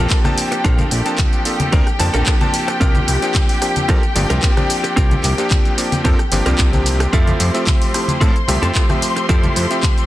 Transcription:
Already playing: F3 A#3 C4 D4 G4 A4 G5 A5
0.00 D4 F4 A#4
0.10 kick, clap, closed hi-hat, shaker
0.24 F3 A#3 C4 D4 A5, cross-stick, closed hi-hat, high conga, shaker
0.37 muted clean electric guitar stroke, open hi-hat, shaker
0.52 muted clean electric guitar stroke, closed hi-hat, shaker
0.64 A#1 F3 A#3 C4 D4 F4 A4 A#4 A5, kick, closed hi-hat, shaker
0.78 closed hi-hat, high conga, shaker
0.91 A#1, open hi-hat, shaker
1.05 F3 A#3 C4 D4 A5, closed hi-hat, shaker
1.18 kick, clap, closed hi-hat, high conga, shaker
1.33 closed hi-hat, shaker
1.45 F3 A#3 C4 D4 A4, open hi-hat, shaker
1.60 closed hi-hat, high conga, shaker
1.72 D2 F3 A#3 C4 D4 F4 A4 A#4, kick, closed hi-hat, shaker
1.87 cross-stick, closed hi-hat, shaker
1.99 F2 F3 A#3 C4 D4 A5, muted clean electric guitar stroke, open hi-hat, high conga, shaker
2.14 A#1 D4 F4 A4 A#4, closed hi-hat, low conga, shaker
2.26 kick, clap, closed hi-hat, shaker
2.40 F3 A#3 C4 D4 A5, closed hi-hat, high conga, shaker
2.54 muted clean electric guitar stroke, open hi-hat, shaker
2.68 muted clean electric guitar stroke, cross-stick, closed hi-hat, shaker
2.80 C2 F3 A#3 C4 D4 F4 G4 A#4, kick, closed hi-hat, shaker
2.95 closed hi-hat, high conga, shaker
3.08 C2, open hi-hat, shaker
3.22 F3 A#3 C4 D4 G4, closed hi-hat, shaker
3.34 kick, clap, closed hi-hat, high conga, shaker
3.49 open hi-hat, shaker
3.61 F3 A#3 C4 D4 G4, cross-stick, open hi-hat, shaker
3.76 closed hi-hat, high conga, shaker
3.88 F2 F3 A#3 C4 D4 F4 G4 A4 A#4, kick, closed hi-hat, shaker
4.03 closed hi-hat, shaker
4.15 G1 F3 A#3 C4 D4 G4, muted clean electric guitar stroke, open hi-hat, high conga, shaker
4.30 C2 C4 F4 G4 A#4, closed hi-hat, low conga, shaker
4.42 kick, clap, closed hi-hat, shaker
4.57 F3 A#3 C4 D4 G4, cross-stick, closed hi-hat, high conga, shaker
4.69 muted clean electric guitar stroke, open hi-hat, shaker
4.84 muted clean electric guitar stroke, closed hi-hat, shaker
4.96 C2 F3 A#3 C4 D4 F4 G4 A#4, kick, closed hi-hat, shaker
5.11 closed hi-hat, high conga, shaker
5.23 C2, clap, open hi-hat, low conga, shaker
5.38 F3 A#3 C4 D4 G4, closed hi-hat, shaker
5.51 kick, clap, closed hi-hat, high conga, shaker
5.65 closed hi-hat, shaker
5.77 F3 A#3 C4 D4 G4, open hi-hat, shaker
5.92 closed hi-hat, high conga, shaker
6.04 F2 F3 A#3 C4 D4 F4 G4 A4 A#4, kick, closed hi-hat, shaker
6.19 cross-stick, closed hi-hat, shaker
6.32 G1 F3 A#3 C4 D4 G4, muted clean electric guitar stroke, open hi-hat, high conga, shaker
6.46 C2 F3 A#3 C4 D4 F4 G4 A#4, closed hi-hat, low conga, shaker
6.58 C2, kick, clap, closed hi-hat, shaker
6.73 F3 A#3 C4 D4 G4, closed hi-hat, high conga, shaker
6.86 muted clean electric guitar stroke, open hi-hat, shaker
7.00 muted clean electric guitar stroke, cross-stick, closed hi-hat, shaker
7.12 F2 F3 A3 C4 E4 F4 G4 A4 C5 E5 C6, kick, closed hi-hat, shaker
7.27 closed hi-hat, high conga, shaker
7.40 F2, open hi-hat, shaker
7.54 F3 A3 C4 G4 E5, closed hi-hat, shaker
7.67 kick, clap, closed hi-hat, high conga, shaker
7.82 open hi-hat, shaker
7.94 F3 A3 C4 E4 G4, cross-stick, open hi-hat, shaker
8.08 closed hi-hat, high conga, shaker
8.21 A2 F3 A3 C4 E4 F4 A4, kick, closed hi-hat, shaker
8.36 closed hi-hat, shaker
8.48 C2 F3 A3 C4 G4 E5, muted clean electric guitar stroke, open hi-hat, high conga, shaker
8.62 F2 C4 E4 F4 A4, closed hi-hat, low conga, shaker
8.75 kick, clap, closed hi-hat, shaker
8.89 F3 A3 C4 G4 E5, cross-stick, closed hi-hat, high conga, shaker
9.02 muted clean electric guitar stroke, open hi-hat, shaker
9.16 muted clean electric guitar stroke, closed hi-hat, shaker
9.29 F2 F3 A3 C4 E4 F4 G4 A4 E5, kick, closed hi-hat, shaker
9.43 closed hi-hat, high conga, shaker
9.56 F2, open hi-hat, shaker
9.70 F3 A3 C4 G4 E5, closed hi-hat, shaker
9.83 kick, clap, closed hi-hat, high conga, shaker
9.98 closed hi-hat, shaker

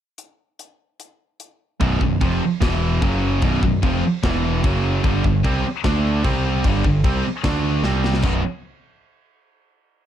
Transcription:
0.18 closed hi-hat
0.59 closed hi-hat
1.00 closed hi-hat
1.40 closed hi-hat
1.80 B0 B1 F#2 B2, kick, crash
2.01 B0 B1 F#2, kick
2.21 F1 F2 C3 F3, kick, crash
2.61 E1 E2 B2 E3, kick, snare, crash
3.01 F#1 F#2 C#3 F#3, kick, crash
3.42 B0 B1 F#2 B2, kick, crash
3.62 B0 B1 F#2, kick
3.82 F1 F2 C3 F3, kick, crash
4.23 E1 E2 B2 E3, kick, snare, crash
4.63 F#1 F#2 C#3 F#3, kick, crash
5.03 G1 G2 D3 G3, kick, crash
5.24 G1 G2 D3, kick
5.43 C2 C3 G3 C4, kick, crash
5.84 D2 D3 A3 D4, kick, snare, crash
6.24 C2 C3 G3 C4, kick, crash
6.64 G1 G2 D3 G3, kick, crash
6.84 G2 D3, kick
7.04 C2 C3 G3 C4, kick, crash
7.44 D2 D3 A3 D4, kick, snare, crash
7.83 C2 C3 G3 C4, snare
8.04 snare
8.14 snare
8.22 B0 B1 F#2 B2, kick, crash

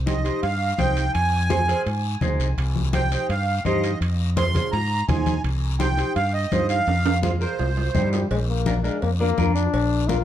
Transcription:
Already playing: C2
0.06 D#4 G4 C5 D#5, high conga, high timbale, short guiro
0.24 D#4 G4 C5, high timbale, short guiro
0.43 G2 F5, high conga, high timbale, long guiro
0.78 C2 D#4 G4 C5 G5, high conga, high timbale, short guiro
0.97 high timbale, short guiro
1.14 F2 G#5, high conga, high timbale, long guiro
1.50 F4 G#4 C5, high conga, high timbale, short guiro
1.68 F4 G#4 C5, high timbale, short guiro
1.86 G#2, high conga, high timbale, long guiro
2.21 D2 D#4 G#4 C5, high conga, low conga, high timbale, short guiro
2.40 C2, high timbale, short guiro
2.57 C2, high conga, high timbale, long guiro
2.76 high conga
2.93 D#4 G4 C5 G5, high conga, high timbale, short guiro
3.12 D#4 G4 C5, high timbale, short guiro
3.29 G2 F5, high conga, high timbale, long guiro
3.65 G2 D#4 G4 C5 D#5, high conga, high timbale, short guiro
3.84 high timbale, short guiro
4.01 F2, high conga, high timbale, long guiro
4.37 F4 G#4 C5 C6, high conga, high timbale, short guiro
4.54 F4 G#4 C5, low conga, high timbale, short guiro
4.72 G#2 A#5, high conga, high timbale, long guiro
5.08 D#2 D#4 G#4 C5 G#5, high conga, low conga, high timbale, low timbale, short guiro
5.26 high conga, high timbale, short guiro
5.44 C2, high conga, high timbale, long guiro
5.79 D#4 G4 C5 G5, high conga, high timbale, short guiro
5.97 D#4 G4 C5, high timbale, short guiro
6.16 G2 F5, high conga, high timbale, long guiro
6.34 D#5
6.52 G2 D#4 G4 C5, high conga, high timbale, low timbale, short guiro
6.69 F5, high timbale, short guiro
6.87 F2, high timbale, long guiro
7.06 high timbale
7.22 F4 G#4 C5 F5, high conga, low timbale, short guiro
7.40 F4 G#4 A#4 C5, short guiro
7.59 C2, high conga, low timbale, long guiro
7.77 low timbale
7.94 G2 G3 D#4 G4 C5, high conga, low conga, short guiro
8.13 low timbale, short guiro
8.31 A#1 G#3, cowbell, high conga, long guiro
8.49 A#3
8.66 D4 F4 A#4, high conga, short guiro
8.84 G#3 D4 F4 A#4, short guiro
9.02 F2 A#3, cowbell, high conga, long guiro
9.20 A#3 D4 F4 A#4
9.37 F2 D4 F4 A#4, high conga, low timbale, short guiro
9.55 D4, short guiro
9.73 A#1, cowbell, high conga, long guiro
10.08 D4 F4 A#4, high conga, short guiro

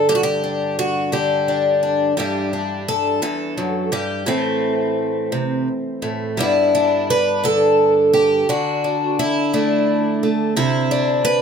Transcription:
Already playing: D3 D4
0.09 G2 G4
0.15 F#4
0.23 G4
0.44 D4
0.79 F#4
1.12 D3 G4
1.48 D4
1.83 D4
2.17 G2 E3 D4 G4
2.53 D4
2.88 A4
3.22 E2 A4
3.57 F#2
3.92 G2 G4
4.26 A2 E3 A3 C4
5.32 C3
6.02 A2
6.37 G2 D3 B3 D4 E4
6.75 D4
7.10 B4
7.44 D3 A4
8.13 G4
8.49 D3 F#4
8.84 D4
9.19 E4
9.54 A3 D4
10.23 A3
10.56 C3 E4
10.91 D4
11.25 B4

